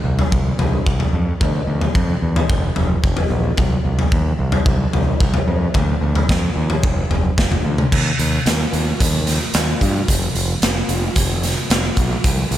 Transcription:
0.04 0.24 C2 medium
0.19 floor tom medium
0.32 0.51 C2 medium
0.32 kick loud
0.59 0.78 C2 medium
0.59 floor tom medium
0.86 1.05 C2 medium
0.86 kick loud
1.00 floor tom medium
1.13 1.32 F2 medium
1.41 1.60 D2 medium
1.41 kick loud
1.41 floor tom medium
1.67 1.87 D2 medium
1.81 floor tom medium
1.95 2.14 F2 medium
1.95 kick loud
2.22 2.42 E2 medium
2.36 floor tom medium
2.49 2.69 F1 medium
2.49 kick loud
2.76 2.96 F1 loud
2.76 floor tom medium
3.03 3.23 F1 medium
3.03 kick loud
3.17 floor tom medium
3.30 3.50 A#1 medium
3.57 3.77 C2 medium
3.57 kick loud
3.57 floor tom medium
3.85 4.04 C2 medium
3.99 floor tom medium
4.12 4.31 D#2 medium
4.12 kick loud
4.39 4.58 C2 medium
4.52 floor tom medium
4.66 4.85 C2 medium
4.66 kick loud
4.93 5.13 C2 medium
4.93 floor tom medium
5.20 5.40 C2 medium
5.20 kick loud
5.34 floor tom medium
5.48 5.67 F2 medium
5.74 5.94 D2 medium
5.74 kick loud
5.74 floor tom medium
6.01 6.21 D2 medium
6.15 floor tom medium
6.29 6.48 F2 medium
6.29 kick loud
6.29 snare medium
6.56 6.75 D#2 medium
6.70 floor tom medium
6.83 7.02 F1 loud
6.83 kick loud
7.10 7.30 F1 medium
7.10 floor tom medium
7.38 7.57 F1 medium
7.38 kick loud
7.38 snare medium
7.52 floor tom medium
7.65 7.84 D2 medium
7.78 mid tom medium
7.92 8.10 D#2 medium
7.92 kick loud
7.92 crash loud
8.19 8.38 D#2 medium
8.19 closed hi-hat medium
8.46 8.64 D#2 medium
8.46 snare loud
8.46 closed hi-hat medium
8.73 8.91 D#2 medium
8.73 closed hi-hat medium
9.00 9.37 D#2 medium
9.00 kick loud
9.00 closed hi-hat loud
9.27 snare soft
9.27 closed hi-hat medium
9.54 9.73 D#2 medium
9.54 snare loud
9.54 closed hi-hat medium
9.81 10.00 G2 medium
9.81 kick medium
9.81 closed hi-hat medium
10.08 10.27 F1 loud
10.08 kick loud
10.08 closed hi-hat medium
10.35 10.53 F1 medium
10.35 closed hi-hat medium
10.62 10.81 F1 medium
10.62 snare loud
10.62 closed hi-hat medium
10.89 11.07 F1 medium
10.89 closed hi-hat medium
11.16 11.53 F1 medium
11.16 kick loud
11.16 closed hi-hat medium
11.43 snare soft
11.43 closed hi-hat medium
11.70 11.89 F1 medium
11.70 snare loud
11.70 closed hi-hat medium
11.97 12.16 B1 medium
11.97 kick medium
11.97 closed hi-hat medium
12.24 12.43 C2 loud
12.24 kick loud
12.24 closed hi-hat medium
12.51 12.58 C2 medium
12.51 closed hi-hat medium

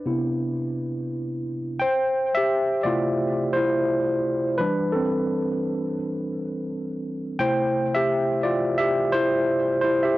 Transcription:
0.00 1.42 D4 medium
0.00 1.41 B4 medium
0.06 1.76 C3 medium
0.06 1.77 B3 soft
0.06 1.77 E4 medium
1.79 2.33 C5 medium
1.79 2.32 G5 loud
2.35 2.82 G4 medium
2.35 2.86 E5 loud
2.83 4.56 C3 medium
2.83 4.56 A3 soft
2.83 3.55 E4 medium
2.83 3.52 F4 medium
2.83 3.50 D5 medium
3.53 4.56 E4 medium
3.53 4.55 C5 medium
4.58 5.08 E3 medium
4.58 5.09 G3 soft
4.58 4.93 D4 medium
4.58 4.91 B4 medium
4.92 5.96 C4 medium
4.92 5.94 A4 medium
7.39 8.40 C3 medium
7.39 8.40 A3 medium
7.39 8.40 E4 medium
7.39 7.91 C5 medium
7.39 7.91 G5 loud
7.95 8.41 G4 medium
7.95 8.40 E5 medium
8.43 8.77 F4 medium
8.43 8.79 D5 loud
8.78 8.96 G4 medium
8.78 8.94 E5 medium
9.12 9.80 E4 medium
9.12 9.80 C5 medium
9.81 10.03 E4 medium
9.81 10.04 C5 medium
10.03 10.18 G4 medium
10.03 10.18 E5 medium

